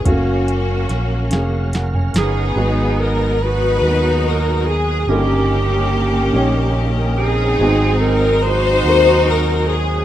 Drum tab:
HH |x-x-x-x-x-x-|------------|------------|------------|
SD |----o-o-o-o-|------------|------------|------------|
T2 |---------o--|------------|------------|------------|
BD |o-----------|------------|------------|------------|